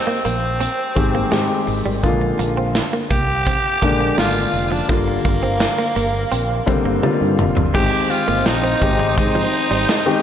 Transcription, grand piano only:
0.00 0.95 D#3 medium
0.00 0.96 G#3 medium
0.00 0.97 C4 medium
0.00 0.97 G4 medium
0.95 1.19 D#3 medium
0.95 1.20 G#3 medium
0.95 1.20 C4 medium
0.95 1.20 G4 medium
1.31 1.79 D#3 medium
1.31 1.79 G#3 medium
1.31 1.79 C4 medium
1.31 1.79 G4 medium
2.03 2.97 D3 medium
2.03 2.97 G#3 medium
2.03 2.97 A#3 medium
2.03 2.97 F4 loud
3.82 4.05 D3 medium
3.82 4.06 G#3 medium
3.82 4.06 A#3 medium
3.82 4.06 D4 medium
4.17 4.64 D3 medium
4.17 4.65 G#3 medium
4.17 4.65 A#3 medium
4.17 4.65 F4 medium
4.88 5.82 D3 medium
4.88 5.83 G3 medium
4.88 5.83 A#3 medium
4.88 5.83 F4 medium
6.66 6.91 D3 medium
6.66 6.91 G3 medium
6.66 6.91 A#3 medium
6.66 6.91 C4 medium
7.02 7.50 D3 medium
7.02 7.50 G3 medium
7.02 7.50 A#3 medium
7.02 7.50 F4 medium
7.74 8.45 D#3 medium
7.74 8.45 G#3 medium
7.74 8.45 C4 medium
7.74 8.45 G4 medium
8.81 9.64 D#3 medium
8.81 9.64 G#3 medium
8.81 9.64 C4 medium
8.81 9.64 G4 medium
10.06 10.22 D#3 medium
10.06 10.22 G#3 medium
10.06 10.22 C4 medium
10.06 10.22 G4 medium

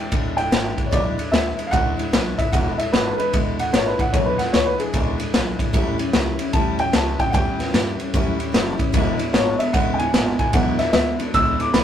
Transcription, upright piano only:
0.00 0.35 G5 medium
0.37 0.90 G5 medium
0.86 0.90 C#5 medium
0.92 1.31 D5 medium
1.32 1.57 E5 medium
1.67 1.70 F5 medium
1.71 2.36 F#5 loud
2.38 2.52 E5 medium
2.52 2.77 F#5 medium
2.78 2.92 E5 medium
2.92 3.17 B4 medium
3.13 3.16 A#4 medium
3.18 3.32 B4 medium
3.60 3.73 F#5 medium
3.73 3.86 C#5 medium
3.86 3.99 B4 medium
4.00 4.13 F#5 medium
4.13 4.26 C#5 medium
4.26 4.39 B4 medium
4.38 4.52 F#5 medium
4.53 4.66 C#5 loud
4.66 4.79 B4 medium
4.79 5.70 G#4 medium
6.53 6.78 A5 medium
6.80 6.94 G5 medium
6.95 7.19 A5 medium
7.20 7.33 G5 medium
7.30 7.33 F#5 medium
7.34 8.51 G5 medium
9.33 9.58 C#5 loud
9.59 9.73 E5 medium
9.73 9.98 F#5 medium
9.94 9.96 G5 medium
9.98 10.38 G#5 loud
10.39 10.53 G#5 medium
10.54 10.79 F#5 medium
10.78 10.92 E5 medium
10.89 10.92 D#5 medium
10.93 11.18 E5 loud
11.34 11.59 E6 loud
11.60 11.74 D6 medium
11.73 11.84 B5 medium

